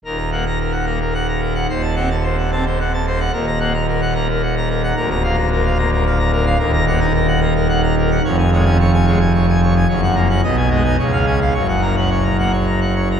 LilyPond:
<<
  \new Staff \with { instrumentName = "Pipe organ" } { \time 3/4 \key ees \minor \tempo 4 = 110 bes'16 bes''16 ges''16 bes''16 bes'16 ges''16 bes''16 bes'16 ges''16 bes''16 bes'16 ges''16 | c''16 a''16 ges''16 a''16 c''16 ges''16 a''16 c''16 ges''16 a''16 c''16 ges''16 | bes'16 bes''16 ges''16 bes''16 bes'16 ges''16 bes''16 bes'16 ges''16 bes''16 bes'16 ges''16 | bes'16 bes''16 f''16 bes''16 bes'16 f''16 bes''16 bes'16 f''16 bes''16 bes'16 f''16 |
\key fis \major ais'16 ais''16 fis''16 ais''16 ais'16 fis''16 ais''16 ais'16 fis''16 ais''16 ais'16 fis''16 | cis''16 gis''16 cis''16 gis''16 cis''16 gis''16 cis''16 gis''16 cis''16 gis''16 cis''16 gis''16 | cis''16 fis''16 ais''16 fis''16 dis''16 gis''16 dis''16 gis''16 cis''16 eis''16 gis''16 eis''16 | cis''16 fis''16 ais''16 fis''16 cis''16 ais''16 fis''16 cis''16 ais''16 fis''16 cis''16 ais''16 | }
  \new Staff \with { instrumentName = "Pipe organ" } { \clef bass \time 3/4 \key ees \minor << { ees,8 bes16 r8. bes16 r4 r16 | ees,8 c'16 r8. c'16 r4 r16 | ees,8 bes16 r8. bes16 r4 r16 | d,8 bes16 r8. bes16 r4 r16 |
\key fis \major dis,8 ais16 dis'16 r8 ais16 r4 r16 | eis,8 gis16 cis'16 r8 gis16 r4 r16 | fis,8 ais16 cis'16 b,8 gis16 dis'16 cis8 cis'16 r16 | fis,8 ais16 cis'16 r8 ais16 r4 r16 | } \\ { ees,,2. | ees,,2. | ees,,2. | d,,2. |
dis,,2. | eis,,2. | fis,,4 b,,4 cis,4 | fis,,2. | } >> }
>>